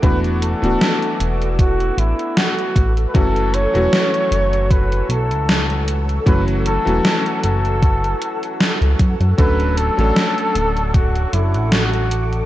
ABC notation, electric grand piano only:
X:1
M:4/4
L:1/16
Q:"Swing 16ths" 1/4=77
K:F#m
V:1 name="Electric grand piano"
[E,A,B,DF]3 [E,A,B,DF]12- [E,A,B,DF] | [E,F,A,CF]3 [E,F,A,CF]12- [E,F,A,CF] | [E,F,A,CF]3 [E,F,A,CF]12- [E,F,A,CF] | [F,A,CDA]3 [F,A,CDA]12- [F,A,CDA] |]